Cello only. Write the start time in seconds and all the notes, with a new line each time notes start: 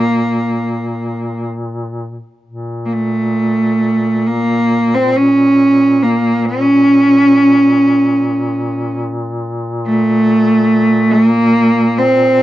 Already playing: A#3
2.86 A#3
2.93 A3
4.27 A#3
4.94 C4
5.16 C#4
6.03 A#3
6.45 C#4
9.86 A3
11.11 A#3
11.98 C4